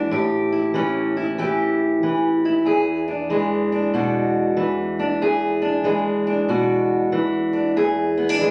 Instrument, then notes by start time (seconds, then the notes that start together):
steel-string acoustic guitar
Already playing: E2 E3 G#3
0.11 A2 G4
0.52 E4
0.74 E3 C#4
1.17 E4
1.38 E3 G4
2.03 E3
2.45 E4
2.65 E2 G#4
3.08 D4
3.30 E3 G#3
3.72 D4
3.94 B2 F#4
4.57 E3
4.99 D4
5.22 E2 G#4
5.62 D4
5.84 E3 G#3
6.27 D4
6.48 B2 F#4
7.12 E3
7.53 D4
7.76 E2 G#4
8.18 B3
8.29 D4
8.41 E3 G#3